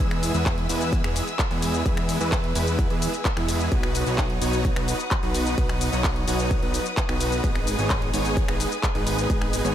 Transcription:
Already playing: string section G#5 E6
0.00 analog synth bass E2, supersaw synth E3 G#3 B3 E4 G#4, string section B4
0.11 finger snap, closed hi-hat
0.23 open hi-hat, shaker
0.34 analog synth bass E2, supersaw synth E3 G#3 B3 E4 B4, closed hi-hat, shaker
0.46 kick, clap, closed hi-hat, shaker
0.58 closed hi-hat
0.69 analog synth bass E2, supersaw synth E3 G#3 B3 E4 B4, open hi-hat, shaker
0.81 closed hi-hat, shaker
0.93 kick, closed hi-hat, shaker
1.04 analog synth bass E2, supersaw synth E3 G#3 B3 E4 G#4, finger snap, closed hi-hat
1.16 open hi-hat, shaker
1.28 closed hi-hat, shaker
1.39 kick, clap, closed hi-hat, shaker
1.51 analog synth bass E2, supersaw synth E3 G#3 B3 E4 G#4, closed hi-hat
1.62 open hi-hat, shaker
1.74 closed hi-hat, shaker
1.86 analog synth bass E2, supersaw synth E3 G#3 B3 E4 G#4, kick, closed hi-hat, shaker
1.97 finger snap, closed hi-hat
2.09 open hi-hat, shaker
2.21 analog synth bass E2, supersaw synth E3 G#3 B3 E4 B4, closed hi-hat, shaker
2.32 kick, clap, closed hi-hat, shaker
2.44 closed hi-hat
2.55 analog synth bass E2, supersaw synth E3 G#3 B3 E4 B4, open hi-hat, shaker
2.67 shaker
2.79 kick, closed hi-hat, shaker
2.90 analog synth bass E2, supersaw synth E3 G#3 B3 E4 G#4, closed hi-hat
3.02 open hi-hat, shaker
3.14 closed hi-hat, shaker
3.25 kick, clap, closed hi-hat, shaker
3.37 analog synth bass E2, supersaw synth E3 G#3 B3 E4 G#4, finger snap, closed hi-hat
3.48 open hi-hat, shaker
3.60 shaker
3.72 analog synth bass B1, supersaw synth F#3 B3 D#4 F#4 B4, string section F#5 D#6, kick, closed hi-hat, shaker
3.83 finger snap, closed hi-hat
3.95 open hi-hat, shaker
4.07 analog synth bass B1, supersaw synth F#3 B3 D#4 F#4 C#5, closed hi-hat, shaker
4.18 kick, clap, closed hi-hat, shaker
4.30 closed hi-hat
4.42 analog synth bass B1, supersaw synth F#3 B3 D#4 F#4 C#5, open hi-hat, shaker
4.53 closed hi-hat, shaker
4.65 kick, closed hi-hat, shaker
4.76 analog synth bass B1, supersaw synth F#3 B3 D#4 F#4 B4, finger snap, closed hi-hat
4.88 open hi-hat, shaker
5.00 closed hi-hat, shaker
5.11 kick, clap, closed hi-hat, shaker
5.23 analog synth bass B1, supersaw synth F#3 B3 D#4 F#4 B4, closed hi-hat
5.35 open hi-hat, shaker
5.46 closed hi-hat, shaker
5.58 analog synth bass B1, supersaw synth F#3 B3 D#4 F#4 B4, kick, closed hi-hat, shaker
5.69 finger snap, closed hi-hat
5.81 open hi-hat, shaker
5.93 analog synth bass B1, supersaw synth F#3 B3 D#4 F#4 C#5, closed hi-hat, shaker
6.04 kick, clap, closed hi-hat, shaker
6.16 closed hi-hat
6.28 analog synth bass B1, supersaw synth F#3 B3 D#4 F#4 C#5, open hi-hat, shaker
6.39 closed hi-hat, shaker
6.51 kick, closed hi-hat, shaker
6.62 analog synth bass B1, supersaw synth F#3 B3 D#4 F#4 B4, closed hi-hat
6.74 open hi-hat, shaker
6.86 closed hi-hat, shaker
6.97 kick, clap, closed hi-hat, shaker
7.09 analog synth bass B1, supersaw synth F#3 B3 D#4 F#4 B4, finger snap, closed hi-hat
7.21 open hi-hat, shaker
7.32 closed hi-hat, shaker
7.44 analog synth bass G#1, supersaw synth G#3 B3 D#4 G#4 B4, string section G#5, kick, closed hi-hat, shaker
7.55 finger snap, closed hi-hat
7.67 open hi-hat, shaker
7.79 analog synth bass G#1, supersaw synth G#3 B3 D#4 G#4 C#5, closed hi-hat, shaker
7.90 kick, clap, closed hi-hat, shaker
8.02 closed hi-hat
8.13 analog synth bass G#1, supersaw synth G#3 B3 D#4 G#4 C#5, open hi-hat, shaker
8.25 closed hi-hat, shaker
8.37 kick, closed hi-hat, shaker
8.48 analog synth bass G#1, supersaw synth G#3 B3 D#4 G#4 B4, finger snap, closed hi-hat
8.60 open hi-hat, shaker
8.72 closed hi-hat, shaker
8.83 kick, clap, closed hi-hat, shaker
8.95 analog synth bass G#1, supersaw synth G#3 B3 D#4 G#4 B4, closed hi-hat
9.07 open hi-hat, shaker
9.18 closed hi-hat, shaker
9.30 analog synth bass G#1, supersaw synth G#3 B3 D#4 G#4, kick, closed hi-hat, shaker
9.42 finger snap, closed hi-hat
9.53 open hi-hat, shaker
9.64 analog synth bass G#1, supersaw synth G#3 B3 D#4 G#4 C#5, closed hi-hat, shaker

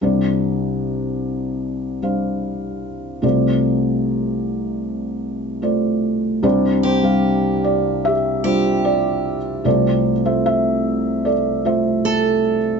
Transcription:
0.01 felt piano C2 C3 G3 D4 C5 D5
2.02 felt piano G3 D4 C5 F5
3.22 felt piano C2 C3 A3 F4 C5 D5
5.62 felt piano A3 F4 C5 D5
6.43 felt piano C2 C3 G3 D4 C5 D5
6.83 steel-string acoustic guitar G4, felt piano C5
7.03 felt piano G3 D4 C5 F5
7.64 felt piano D5
8.05 felt piano G4 E5
8.44 felt piano G3 D4 F4 C5, steel-string acoustic guitar G4
8.85 felt piano D5
9.64 felt piano C2 C3 A3 F4 A4 C5 D5
10.25 felt piano A3 F4 C5 E5
10.46 felt piano E5
11.25 felt piano A4 D5
11.65 felt piano A3 F4 C5 E5
12.05 steel-string acoustic guitar A4

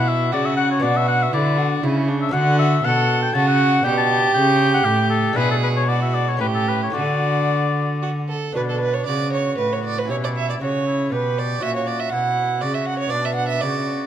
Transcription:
Already playing: lute B2 C#4 F#4, cello B2, violin E4
0.08 oboe E5
0.32 cello C#3, lute C#3, violin F#4, oboe D5
0.46 oboe E5
0.57 oboe F#5
0.71 oboe C#5
0.80 cello B2, lute B3 D4 F#4, violin F#4, oboe D5
0.84 lute B2
0.97 oboe E5
1.08 oboe F#5
1.22 oboe E5
1.33 cello D3, lute D3, violin E4, oboe D5
1.58 violin F#4
1.83 cello C#3, lute C#3, violin E4
2.08 violin D4
2.21 oboe E5
2.29 lute A3 F#4, oboe F#5
2.34 lute D3, cello D3, violin F#4
2.59 oboe E5
2.84 cello B2, lute B2, violin A4, oboe F#5
3.22 oboe G5
3.34 cello C#3, lute C#3, violin F#4, oboe A5
3.47 oboe F#5
3.83 cello B2, lute B2 D4, oboe G5
3.87 violin G4
3.97 oboe A5
4.34 lute C#3, cello C#3, oboe G5
4.74 oboe F#5
4.85 cello A2, lute A2, oboe G4
5.10 oboe A4
5.33 cello B2, lute G#3 D4 E4, oboe B4
5.37 lute B2, violin G#4
5.51 oboe A4
5.63 oboe B4
5.76 oboe C#5
5.88 violin F#4, oboe D5
6.02 oboe E5
6.14 oboe D5
6.28 oboe C#5
6.37 cello A2, lute A3 C#4 G4, violin G4, oboe B4
6.41 lute A2
6.54 oboe A4
6.69 oboe B4
6.83 oboe C#5
6.90 lute A3 F#4, oboe D5
6.94 lute D3, cello D3, violin F#4
8.02 violin F#4
8.29 violin A4
8.52 lute B3 D4 F#4, violin B4
8.56 cello B2, lute B2, oboe D4
8.70 violin A4
8.81 violin B4
8.94 violin C#5
9.06 cello C#3, lute C#3, oboe F#4, violin D5
9.33 violin C#5
9.58 lute A2, cello A2, violin B4
9.73 violin C#5
9.85 violin D5
9.98 violin B4
10.05 lute C#4 E4 G4
10.10 cello B2, lute B2, oboe E4, violin C#5
10.24 violin D5
10.37 violin E5
10.50 violin D5
10.61 cello C#3, lute C#3, oboe F#4, violin C#5
10.87 oboe E4
11.12 lute B2, cello B2, oboe G4, violin B4
11.39 violin D5
11.58 cello A#2, lute C#4 F#4, oboe F#4
11.62 lute A#2, violin E5
11.76 violin C#5
11.87 violin D5
12.00 violin E5
12.10 lute B2, cello B2, oboe E4, violin F#5
12.61 lute C#3, cello C#3, oboe F#4, violin D5
12.74 violin E5
12.86 violin F#5
12.99 violin C#5
13.07 lute B3 D4 F#4, violin D5
13.12 lute B2, cello B2, oboe D4
13.25 violin E5
13.35 violin F#5
13.48 violin E5
13.61 cello C#3, lute C#3, oboe F#4, violin D5

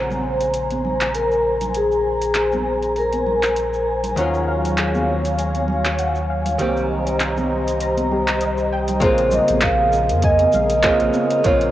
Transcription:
Already playing: sub bass A#1, hollow-body jazz guitar C#3 G#3 A#3 C4 F4, vibraphone C5, analog synth pad C5 G#5 A#5
0.11 high conga, low conga, cabasa
0.41 closed hi-hat, cabasa
0.54 closed hi-hat, cabasa
0.71 closed hi-hat, high conga, cabasa
0.85 low conga
1.01 clap, closed hi-hat, cabasa
1.15 vibraphone A#4, closed hi-hat, cabasa
1.32 cabasa
1.61 closed hi-hat, low conga, cabasa
1.75 vibraphone G#4, closed hi-hat, cabasa
1.92 cabasa
2.22 closed hi-hat, cabasa
2.35 clap, closed hi-hat, cabasa
2.52 high conga, low conga, cabasa
2.82 closed hi-hat, cabasa
2.96 vibraphone A#4, closed hi-hat, cabasa
3.12 closed hi-hat, high conga, cabasa
3.26 low conga
3.43 clap, closed hi-hat, cabasa
3.56 closed hi-hat, cabasa
3.74 cabasa
4.04 closed hi-hat, low conga, cabasa
4.16 sub bass D#2, hollow-body jazz guitar D#3 F#3 G#3 C#4, analog synth pad F#3 C#5 F5, synth pluck F#5, closed hi-hat, cabasa
4.20 hollow-body jazz guitar F4
4.34 cabasa
4.48 synth pluck F5
4.65 closed hi-hat, cabasa
4.78 synth pluck G#4, clap, closed hi-hat, cabasa
4.95 high conga, low conga, cabasa
5.25 closed hi-hat, cabasa
5.39 closed hi-hat, cabasa
5.55 closed hi-hat, high conga, cabasa
5.68 low conga
5.85 clap, closed hi-hat, cabasa
5.99 synth pluck F#5, closed hi-hat, cabasa
6.15 cabasa
6.30 synth pluck F5
6.46 closed hi-hat, low conga, cabasa
6.58 sub bass C2, hollow-body jazz guitar D#3 G3 A#3 C4 G4, synth pluck G4, analog synth pad G4 C5 D#5 A#5, closed hi-hat, cabasa
6.77 cabasa
7.07 closed hi-hat, cabasa
7.20 clap, closed hi-hat, cabasa
7.37 high conga, low conga, cabasa
7.68 closed hi-hat, cabasa
7.80 synth pluck A#5, closed hi-hat, cabasa
7.97 closed hi-hat, high conga, cabasa
8.11 synth pluck G4, low conga
8.28 clap, closed hi-hat, cabasa
8.41 synth pluck D#5, closed hi-hat, cabasa
8.58 cabasa
8.72 synth pluck G5
8.88 closed hi-hat, low conga, cabasa
9.00 sub bass A#1, hollow-body jazz guitar C#3 G#3 A#3 C4, analog synth pad A#3 G#4 A#4, synth pluck G#4, kick, closed hi-hat, cabasa
9.04 hollow-body jazz guitar F4, vibraphone C5
9.18 closed hi-hat
9.31 vibraphone D#5, low conga, cabasa
9.48 sub bass A#1, closed hi-hat, high conga, cabasa
9.61 vibraphone F5, kick, clap, closed hi-hat, cabasa
9.92 cabasa
10.09 sub bass F2, closed hi-hat, cabasa
10.22 vibraphone D#5, synth pluck G#5, kick, closed hi-hat, cabasa
10.39 closed hi-hat, high conga
10.52 sub bass A#1, synth pluck F5, low conga, cabasa
10.70 closed hi-hat, cabasa
10.83 hollow-body jazz guitar C#3 G#3 A#3 C4 F4, synth pluck G#4, kick, clap, closed hi-hat, cabasa
11.00 sub bass A#1, closed hi-hat
11.14 high conga, cabasa
11.30 closed hi-hat, cabasa
11.44 sub bass A#1, hollow-body jazz guitar C#3 G#3 A#3 C4 F4, vibraphone C#5, kick, closed hi-hat, cabasa
11.61 closed hi-hat

